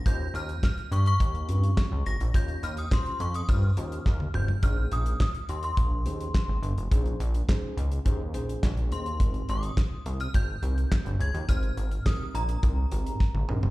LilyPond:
<<
  \new Staff \with { instrumentName = "Synth bell" } { \time 4/4 \key bes \dorian \tempo 4 = 105 g'''8 f'''8 f'''8 des'''16 des'''4.~ des'''16 bes'''8 | g'''8 f'''16 ees'''16 c'''8 des'''16 ees'''16 f'''4. g'''8 | f'''8 ees'''8 ees'''8 c'''16 c'''4.~ c'''16 r8 | r2. r8 c'''8~ |
c'''8 ees'''4~ ees'''16 f'''16 g'''4. aes'''8 | f'''4 ees'''8 bes''4. r4 | }
  \new Staff \with { instrumentName = "Tine electric piano" } { \time 4/4 \key bes \dorian <des' f' g' c''>4 r4. <c' des' f' g'>8 r4 | <des' f' g' des''>8 r8 <des' f' g' c''>8 r8 <des' f' g' c''>16 r16 <des' f' g' c''>8 r8 <des' f' g' c''>16 r16 | <des' ees' aes' c''>4 r4. <des' ees' aes' c''>8 r4 | <des' ees' aes' c''>8 r8 <des' ees' aes' c''>8 r8 <des' ees' aes' c''>16 r16 <des' ees' aes' c''>8 r8 <des' ees' aes' c''>16 r16 |
<c' ees' g' bes'>4 r4. <c' ees' g' bes'>8 r4 | <c' ees' g' c''>8 r8 <c' ees' g' bes'>8 r8 <c' ees' g' bes'>16 r16 <c' ees' g' bes'>8 r8 <c' ees' g' bes'>16 r16 | }
  \new Staff \with { instrumentName = "Analog synth bass" } { \clef bass \time 4/4 \key bes \dorian ees,8 ees,8 r8 g,8 ees,8 g,8 r16 des,16 aes,,16 bes,,16 | ees,8 ees,8 r8 f,8 g,8 ees,8 ees,8 f,,8 | bes,,8 bes,,8 r8 ees,8 bes,,8 ees,8 r16 aes,,16 g,,16 f,,16 | bes,,8 bes,,8 r8 des,8 ees,8 bes,,8 bes,,8 ees,8 |
aes,,8 aes,,8 r8 c,8 aes,,8 c,8 r16 g,,16 des,16 ees,16 | aes,,8 aes,,8 r8 bes,,8 c,8 aes,,8 r16 aes,,16 bes,,16 f,,16 | }
  \new DrumStaff \with { instrumentName = "Drums" } \drummode { \time 4/4 <hh bd>8 hh16 hh16 <hc bd sn>16 hh16 hh16 hh16 <hh bd>16 hh16 hh16 hh16 <hc bd sn>8 hh16 hh16 | <hh bd>16 hh16 hh16 hh16 <hc bd sn>16 hh16 hh16 hh16 <hh bd>8 hh16 hh16 <bd sn>16 tommh16 toml16 tomfh16 | <hh bd>8 hh16 hh16 <hc bd sn>16 hh16 hh16 hh16 <hh bd>8 hh16 hh16 <hc bd sn>8 hh16 hh16 | <hh bd>16 hh16 hh16 hh16 <hc bd sn>8 hh16 hh16 <hh bd>8 hh16 hh16 <hc bd sn>16 hh16 hh16 hh16 |
<hh bd>16 hh16 hh16 hh16 <hc bd sn>8 hh16 hh16 <hh bd>8 hh16 hh16 <hc bd sn>16 hh16 hh16 hh16 | <hh bd>16 hh16 hh16 hh16 <hc bd sn>8 hh16 hh16 <hh bd>8 hh16 hh16 <bd sn>16 tommh16 toml16 tomfh16 | }
>>